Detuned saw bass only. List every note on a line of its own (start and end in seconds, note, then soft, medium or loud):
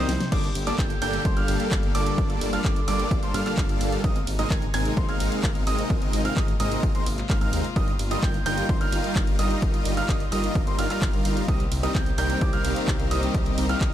0.09 0.17 C2 medium
0.32 0.48 G1 loud
0.55 0.72 G1 medium
0.79 0.95 G1 medium
1.02 1.18 G1 loud
1.25 1.41 G1 medium
1.48 1.57 G1 loud
1.72 1.80 G1 medium
1.83 1.91 G1 medium
1.95 2.11 G1 loud
2.18 2.34 G1 loud
2.41 2.58 G1 medium
2.65 2.81 G1 medium
2.88 3.04 G1 loud
3.11 3.27 G1 medium
3.34 3.43 G1 loud
3.58 3.66 G1 medium
3.69 3.77 G1 medium
3.81 3.97 G1 loud
4.04 4.20 G#1 loud
4.27 4.44 G#1 medium
4.51 4.67 G#1 medium
4.74 4.90 G#1 loud
4.97 5.13 G#1 medium
5.20 5.29 G#1 loud
5.44 5.52 G#1 medium
5.55 5.63 G#1 medium
5.67 5.83 G#1 loud
5.90 6.06 G#1 loud
6.13 6.30 G#1 medium
6.37 6.53 G#1 medium
6.60 6.76 G#1 loud
6.83 6.91 G#1 medium
7.06 7.23 G#1 medium
7.30 7.38 G#1 medium
7.41 7.49 G#1 loud
7.53 7.61 D#2 medium
7.76 7.93 G1 loud
7.99 8.16 G1 medium
8.23 8.39 G1 medium
8.46 8.62 G1 loud
8.69 8.86 G1 medium
8.93 9.01 G1 loud
9.16 9.24 G1 medium
9.27 9.36 G1 medium
9.39 9.55 G1 loud
9.62 9.79 G1 loud
9.86 10.02 G1 medium
10.09 10.25 G1 medium
10.32 10.48 G1 loud
10.55 10.72 G1 medium
10.79 10.87 G1 loud
11.02 11.10 G1 medium
11.13 11.22 G1 medium
11.25 11.41 G1 loud
11.48 11.65 C2 loud
11.72 11.88 C2 medium
11.95 12.11 C2 medium
12.18 12.34 C2 loud
12.41 12.58 C2 medium
12.64 12.73 C2 loud
12.88 12.96 C2 medium
12.99 13.08 C2 medium
13.11 13.27 C2 loud
13.34 13.51 C2 loud
13.58 13.74 C2 medium
13.81 13.94 C2 medium